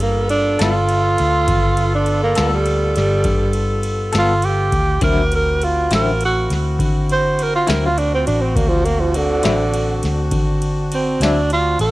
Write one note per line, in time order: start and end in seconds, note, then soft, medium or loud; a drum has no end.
0.00 0.56 G2 loud
0.00 0.30 A#3 medium
0.00 4.85 B3 medium
0.00 4.85 F4 medium
0.00 4.85 A4 medium
0.00 ride medium
0.29 0.59 D4 medium
0.29 ride medium
0.59 1.16 G1 medium
0.59 0.78 G3 medium
0.59 0.78 B3 medium
0.59 0.78 F4 medium
0.59 1.90 F4 loud
0.59 0.77 A4 medium
0.59 snare loud
0.59 ride medium
0.89 ride medium
1.18 1.47 D2 medium
1.18 ride medium
1.48 2.33 G1 loud
1.48 kick loud
1.48 ride medium
1.77 ride medium
1.95 2.23 D4 medium
2.06 ride soft
2.23 2.52 A#3 medium
2.35 2.93 D2 medium
2.35 2.56 G3 medium
2.35 2.56 B3 medium
2.35 2.55 F4 medium
2.35 2.55 A4 medium
2.35 snare loud
2.35 ride medium
2.53 2.96 G3 medium
2.66 ride medium
2.96 3.24 G1 medium
2.96 3.54 G3 loud
2.96 snare soft
2.96 ride medium
3.24 4.10 G2 loud
3.24 kick loud
3.24 ride medium
3.53 ride medium
3.83 ride medium
4.13 4.69 G1 medium
4.13 4.32 G3 medium
4.13 4.32 B3 medium
4.13 4.32 F4 medium
4.13 4.31 A4 medium
4.13 snare loud
4.13 ride medium
4.19 4.47 F4 loud
4.42 5.02 G4 medium
4.42 ride medium
4.72 5.00 D2 medium
4.72 kick medium
4.72 ride medium
5.01 5.87 D2 medium
5.01 5.20 D3 medium
5.01 5.20 F#3 medium
5.01 5.20 C4 medium
5.01 11.91 C4 medium
5.01 8.53 E4 medium
5.01 5.21 E4 medium
5.01 11.91 F#4 medium
5.01 5.32 A#4 medium
5.01 kick loud
5.01 ride medium
5.32 5.65 A#4 medium
5.32 ride medium
5.62 5.91 F4 medium
5.62 ride medium
5.91 6.46 A1 medium
5.91 6.10 D3 medium
5.91 6.10 F#3 medium
5.91 6.10 C4 medium
5.91 6.09 E4 medium
5.91 6.22 A#4 medium
5.91 snare loud
5.91 ride medium
6.21 ride medium
6.25 6.52 F#4 loud
6.50 6.77 D2 medium
6.50 snare soft
6.50 ride medium
6.79 7.64 D3 loud
6.79 kick loud
6.79 ride medium
7.09 7.45 C5 medium
7.09 ride medium
7.39 ride medium
7.43 7.55 A#4 medium
7.55 7.71 F4 medium
7.67 8.23 D2 medium
7.67 7.87 D3 medium
7.67 7.86 F#3 medium
7.67 7.86 C4 medium
7.67 7.85 E4 medium
7.67 7.83 A#4 medium
7.67 snare loud
7.67 ride medium
7.86 8.00 F4 medium
7.98 8.12 D4 medium
7.98 ride medium
8.14 8.27 C4 medium
8.27 8.54 A1 medium
8.27 8.43 D4 medium
8.27 ride medium
8.42 8.57 C4 medium
8.55 9.40 D2 medium
8.55 8.70 A#3 medium
8.55 11.91 D4 medium
8.55 kick loud
8.55 ride medium
8.68 8.87 F3 loud
8.85 9.02 A#3 loud
8.85 ride medium
9.00 9.18 F3 medium
9.14 10.30 D3 loud
9.14 ride medium
9.43 10.00 A1 medium
9.43 9.63 D3 medium
9.43 9.62 F#3 medium
9.43 9.62 C4 medium
9.43 9.62 E4 medium
9.43 snare loud
9.43 ride medium
9.74 ride medium
10.03 10.31 D2 medium
10.03 snare soft
10.03 ride medium
10.31 11.17 D3 loud
10.31 kick loud
10.31 ride medium
10.62 ride medium
10.92 11.24 C4 medium
10.92 ride medium
11.20 11.76 D2 medium
11.20 11.40 D3 medium
11.20 11.40 F#3 medium
11.20 11.39 C4 medium
11.20 11.50 D4 loud
11.20 11.39 E4 medium
11.20 snare loud
11.20 ride medium
11.50 11.80 F4 medium
11.50 ride medium
11.79 11.91 A1 medium
11.79 11.91 A#4 loud
11.79 ride medium